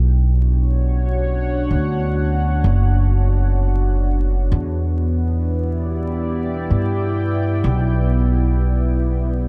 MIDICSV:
0, 0, Header, 1, 3, 480
1, 0, Start_track
1, 0, Key_signature, 2, "minor"
1, 0, Tempo, 500000
1, 9104, End_track
2, 0, Start_track
2, 0, Title_t, "Ambient pad"
2, 0, Program_c, 0, 92
2, 0, Note_on_c, 0, 59, 81
2, 0, Note_on_c, 0, 62, 86
2, 0, Note_on_c, 0, 64, 74
2, 61, Note_on_c, 0, 66, 82
2, 129, Note_on_c, 0, 73, 87
2, 519, Note_on_c, 0, 78, 84
2, 608, Note_off_c, 0, 64, 0
2, 4322, Note_off_c, 0, 59, 0
2, 4332, Note_off_c, 0, 78, 0
2, 4334, Note_on_c, 0, 59, 82
2, 4339, Note_off_c, 0, 66, 0
2, 4342, Note_off_c, 0, 73, 0
2, 4654, Note_on_c, 0, 64, 77
2, 5033, Note_on_c, 0, 67, 75
2, 5136, Note_on_c, 0, 74, 76
2, 5164, Note_off_c, 0, 62, 0
2, 5743, Note_on_c, 0, 79, 76
2, 9104, Note_off_c, 0, 59, 0
2, 9104, Note_off_c, 0, 64, 0
2, 9104, Note_off_c, 0, 67, 0
2, 9104, Note_off_c, 0, 74, 0
2, 9104, Note_off_c, 0, 79, 0
2, 9104, End_track
3, 0, Start_track
3, 0, Title_t, "Upright bass"
3, 0, Program_c, 1, 32
3, 0, Note_on_c, 1, 35, 95
3, 1610, Note_off_c, 1, 35, 0
3, 1638, Note_on_c, 1, 38, 84
3, 2510, Note_off_c, 1, 38, 0
3, 2536, Note_on_c, 1, 30, 107
3, 4310, Note_off_c, 1, 30, 0
3, 4336, Note_on_c, 1, 40, 103
3, 6409, Note_off_c, 1, 40, 0
3, 6436, Note_on_c, 1, 43, 83
3, 7309, Note_off_c, 1, 43, 0
3, 7335, Note_on_c, 1, 35, 103
3, 9104, Note_off_c, 1, 35, 0
3, 9104, End_track
0, 0, End_of_file